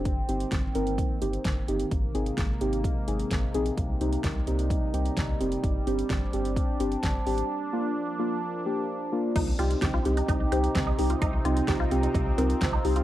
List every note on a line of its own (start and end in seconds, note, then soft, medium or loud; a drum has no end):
0.00 1.88 C4 medium
0.05 0.22 G1 loud
0.05 1.90 D#3 medium
0.05 5.60 A#3 medium
0.05 kick loud
0.05 closed hi-hat medium
0.29 0.45 G1 loud
0.29 0.46 C4 medium
0.29 0.46 D#4 medium
0.29 0.46 G4 medium
0.29 closed hi-hat medium
0.40 closed hi-hat medium
0.52 0.68 G1 loud
0.52 kick loud
0.52 snare loud
0.52 closed hi-hat medium
0.75 1.00 G1 loud
0.75 0.93 C4 medium
0.75 0.93 D#4 medium
0.75 0.93 A#4 medium
0.75 closed hi-hat medium
0.87 closed hi-hat medium
0.98 kick loud
0.98 closed hi-hat medium
1.22 1.38 G1 loud
1.22 1.39 C4 medium
1.22 1.39 D#4 medium
1.22 1.39 G4 medium
1.22 closed hi-hat medium
1.33 closed hi-hat soft
1.45 1.61 G1 medium
1.45 kick loud
1.45 snare loud
1.45 closed hi-hat medium
1.68 1.85 G1 loud
1.68 1.86 C4 medium
1.68 1.86 D#4 medium
1.68 1.86 G4 medium
1.68 closed hi-hat medium
1.80 closed hi-hat medium
1.91 2.08 G#1 loud
1.91 5.60 C3 medium
1.91 3.76 G#3 medium
1.91 kick loud
1.91 closed hi-hat medium
2.15 2.31 G#1 loud
2.15 2.32 C4 medium
2.15 2.32 D#4 medium
2.15 2.32 G#4 medium
2.15 closed hi-hat medium
2.26 closed hi-hat soft
2.38 2.54 G#1 loud
2.38 kick loud
2.38 snare loud
2.38 closed hi-hat medium
2.61 2.86 G#1 loud
2.61 2.79 C4 medium
2.61 2.79 D#4 medium
2.61 2.79 G4 medium
2.61 closed hi-hat medium
2.73 closed hi-hat medium
2.84 kick loud
2.84 closed hi-hat medium
3.08 3.24 G#1 loud
3.08 3.25 C4 medium
3.08 3.25 D#4 medium
3.08 3.25 G#4 medium
3.08 closed hi-hat medium
3.19 closed hi-hat soft
3.31 3.47 G#1 loud
3.31 kick loud
3.31 snare loud
3.31 closed hi-hat medium
3.54 3.71 A#1 loud
3.54 3.72 C4 medium
3.54 3.72 D#4 medium
3.54 3.72 G#4 medium
3.54 closed hi-hat medium
3.66 closed hi-hat medium
3.77 3.94 C2 loud
3.77 7.46 G3 medium
3.77 5.62 D#4 medium
3.77 kick loud
3.77 closed hi-hat medium
4.01 4.17 C2 medium
4.01 4.18 C4 medium
4.01 4.18 D#4 medium
4.01 4.18 G4 medium
4.01 closed hi-hat medium
4.13 closed hi-hat medium
4.24 4.40 C2 loud
4.24 kick loud
4.24 snare loud
4.24 closed hi-hat medium
4.47 4.72 C2 loud
4.47 4.65 C4 medium
4.47 4.65 D#4 medium
4.47 4.65 G4 medium
4.47 closed hi-hat medium
4.59 closed hi-hat medium
4.70 kick loud
4.70 closed hi-hat medium
4.94 5.10 C2 loud
4.94 5.11 C4 medium
4.94 5.11 D#4 medium
4.94 5.11 G4 medium
4.94 closed hi-hat medium
5.06 closed hi-hat soft
5.17 5.33 C2 loud
5.17 kick loud
5.17 snare loud
5.17 closed hi-hat medium
5.40 5.57 F1 medium
5.40 5.58 C4 medium
5.40 5.58 D#4 medium
5.40 5.58 G4 medium
5.40 closed hi-hat medium
5.52 closed hi-hat medium
5.64 5.80 G1 loud
5.64 7.48 C4 medium
5.64 9.32 D4 medium
5.64 kick loud
5.64 closed hi-hat medium
5.87 6.03 G1 loud
5.87 6.04 C4 medium
5.87 6.04 D4 medium
5.87 6.04 G4 medium
5.87 closed hi-hat medium
5.99 closed hi-hat medium
6.10 6.26 G1 loud
6.10 kick loud
6.10 snare loud
6.10 closed hi-hat medium
6.33 6.58 G1 loud
6.33 6.51 C4 medium
6.33 6.51 D4 medium
6.33 6.51 G4 medium
6.33 closed hi-hat medium
6.45 closed hi-hat medium
6.56 kick loud
6.56 closed hi-hat medium
6.80 6.96 G1 loud
6.80 6.97 C4 medium
6.80 6.98 D4 medium
6.80 6.97 G4 medium
6.80 closed hi-hat medium
6.92 closed hi-hat soft
7.03 7.20 G1 loud
7.03 kick loud
7.03 snare loud
7.03 closed hi-hat medium
7.26 7.43 G#1 medium
7.26 7.44 C4 medium
7.26 7.44 D4 medium
7.26 7.44 G4 medium
7.26 open hi-hat medium
7.38 closed hi-hat medium
7.50 9.34 F3 medium
7.50 9.34 A#3 medium
7.73 7.90 A#3 medium
7.73 7.90 D4 medium
7.73 7.90 F4 loud
8.19 8.37 A#3 medium
8.19 8.37 D4 medium
8.19 8.37 F4 loud
8.66 8.84 A#3 medium
8.66 8.84 D4 medium
8.66 8.84 G4 medium
9.13 9.30 A#3 medium
9.13 9.30 D4 medium
9.13 9.30 F4 medium
9.36 9.52 C2 loud
9.36 13.04 C3 medium
9.36 13.04 C4 medium
9.36 13.04 D#4 medium
9.36 9.49 D#4 loud
9.36 11.20 G4 medium
9.36 kick loud
9.36 closed hi-hat medium
9.36 crash loud
9.59 9.75 C2 medium
9.59 9.77 C4 medium
9.59 9.77 D#4 medium
9.59 9.72 F4 medium
9.59 9.77 G4 loud
9.59 closed hi-hat medium
9.71 closed hi-hat medium
9.82 9.99 C2 loud
9.82 9.89 G4 medium
9.82 kick loud
9.82 snare loud
9.82 closed hi-hat medium
9.94 10.07 F4 medium
10.05 10.22 C2 loud
10.05 10.23 C4 medium
10.05 10.23 D#4 medium
10.05 10.23 G4 loud
10.05 closed hi-hat medium
10.17 10.24 D#4 medium
10.17 closed hi-hat medium
10.28 10.45 C2 loud
10.28 10.42 D#4 medium
10.28 kick loud
10.28 closed hi-hat medium
10.52 10.68 C2 loud
10.52 10.65 C4 medium
10.52 10.70 C4 medium
10.52 10.70 D#4 medium
10.52 10.70 G4 medium
10.52 closed hi-hat medium
10.64 closed hi-hat medium
10.75 10.92 C2 loud
10.75 10.82 C4 medium
10.75 kick loud
10.75 snare loud
10.75 closed hi-hat medium
10.87 11.00 D#4 medium
10.99 11.15 C2 loud
10.99 11.16 C4 medium
10.99 11.16 D#4 medium
10.99 11.16 G4 loud
10.99 open hi-hat medium
11.10 11.17 F4 medium
11.10 closed hi-hat medium
11.22 11.38 C2 loud
11.22 11.35 D#4 loud
11.22 13.04 F4 medium
11.22 kick loud
11.22 closed hi-hat medium
11.45 11.61 C2 loud
11.45 11.63 C4 medium
11.45 11.63 D#4 medium
11.45 11.58 F4 medium
11.45 11.63 G4 loud
11.45 closed hi-hat medium
11.57 closed hi-hat medium
11.68 11.85 C2 loud
11.68 11.75 G4 medium
11.68 kick loud
11.68 snare loud
11.68 closed hi-hat medium
11.80 11.93 F4 medium
11.91 12.08 C2 loud
11.91 12.09 C4 medium
11.91 12.09 D#4 medium
11.91 12.09 G4 loud
11.91 closed hi-hat medium
12.03 12.10 D#4 medium
12.03 closed hi-hat medium
12.15 12.31 C2 loud
12.15 12.28 D#4 medium
12.15 kick loud
12.15 closed hi-hat medium
12.38 12.54 C2 loud
12.38 12.51 C4 medium
12.38 12.56 C4 medium
12.38 12.56 D#4 medium
12.38 12.56 A#4 medium
12.38 closed hi-hat medium
12.50 closed hi-hat medium
12.61 12.78 C2 loud
12.61 12.68 C4 medium
12.61 kick loud
12.61 snare loud
12.61 closed hi-hat medium
12.73 12.86 D#4 medium
12.85 13.01 C2 loud
12.85 13.02 C4 medium
12.85 13.02 D#4 medium
12.85 13.02 G4 loud
12.85 open hi-hat medium
12.96 13.03 F4 medium
12.96 closed hi-hat medium